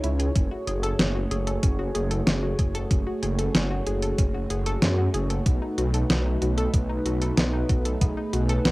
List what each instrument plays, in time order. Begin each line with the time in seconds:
Already playing: analog synth pad G#3 D#4 E4 C#5
0.03 detuned saw bass C#2, synth arpeggio sound E4, closed hi-hat
0.19 synth arpeggio sound G#4, closed hi-hat
0.35 detuned saw bass F#1, analog synth pad A3 F#4 G#4, synth arpeggio sound C#4, kick, closed hi-hat
0.51 synth arpeggio sound F#4
0.67 detuned saw bass F#1, synth arpeggio sound G#4, closed hi-hat
0.83 synth arpeggio sound A4, closed hi-hat
0.99 detuned saw bass F#1, synth arpeggio sound C#4, snare, closed hi-hat
1.15 synth arpeggio sound F#4
1.31 detuned saw bass F#1, synth arpeggio sound G#4, closed hi-hat
1.47 synth arpeggio sound A4, closed hi-hat
1.63 detuned saw bass F#1, synth arpeggio sound C#4, kick, closed hi-hat
1.79 synth arpeggio sound F#4
1.95 detuned saw bass F#1, synth arpeggio sound G#4, closed hi-hat
2.11 synth arpeggio sound A4, closed hi-hat
2.27 detuned saw bass F#1, synth arpeggio sound C#4, snare, closed hi-hat
2.43 synth arpeggio sound F#4
2.59 detuned saw bass F#1, synth arpeggio sound G#4, kick, closed hi-hat
2.75 synth arpeggio sound A4, closed hi-hat
2.91 detuned saw bass F#1, synth arpeggio sound C#4, kick, closed hi-hat
3.07 synth arpeggio sound F#4
3.23 detuned saw bass F#1, synth arpeggio sound G#4, closed hi-hat
3.39 synth arpeggio sound A4, closed hi-hat
3.55 detuned saw bass F#1, synth arpeggio sound C#4, snare, closed hi-hat
3.71 synth arpeggio sound F#4
3.86 detuned saw bass F#1, synth arpeggio sound G#4, closed hi-hat
4.02 synth arpeggio sound A4, closed hi-hat
4.18 detuned saw bass F#1, synth arpeggio sound C#4, kick, closed hi-hat
4.34 synth arpeggio sound F#4
4.50 detuned saw bass F#1, synth arpeggio sound G#4, closed hi-hat
4.66 synth arpeggio sound A4, closed hi-hat
4.82 detuned saw bass F#2, synth arpeggio sound C#4, snare, closed hi-hat
4.98 synth arpeggio sound F#4
5.14 detuned saw bass F#1, synth arpeggio sound G#4, closed hi-hat
5.30 synth arpeggio sound A4, closed hi-hat
5.46 detuned saw bass B1, synth arpeggio sound B3, analog synth pad D#4 B4, kick, closed hi-hat
5.62 synth arpeggio sound D#4
5.78 detuned saw bass B1, synth arpeggio sound F#4, closed hi-hat
5.94 synth arpeggio sound A4, closed hi-hat
6.10 detuned saw bass B1, synth arpeggio sound B3, snare, closed hi-hat
6.26 synth arpeggio sound D#4
6.42 detuned saw bass B1, synth arpeggio sound F#4, closed hi-hat
6.58 synth arpeggio sound A4, closed hi-hat
6.74 detuned saw bass B1, synth arpeggio sound B3, kick, closed hi-hat
6.90 synth arpeggio sound D#4
7.06 detuned saw bass B1, synth arpeggio sound F#4, closed hi-hat
7.22 synth arpeggio sound A4, closed hi-hat
7.38 detuned saw bass B1, synth arpeggio sound B3, snare, closed hi-hat
7.54 synth arpeggio sound D#4
7.69 detuned saw bass B1, synth arpeggio sound F#4, kick, closed hi-hat
7.85 synth arpeggio sound A4, closed hi-hat
8.01 detuned saw bass B1, synth arpeggio sound B3, analog synth pad G#4, kick, closed hi-hat
8.17 synth arpeggio sound D#4
8.33 detuned saw bass B1, synth arpeggio sound F#4, closed hi-hat
8.49 synth arpeggio sound A4, closed hi-hat
8.65 detuned saw bass B1, synth arpeggio sound B3, snare, closed hi-hat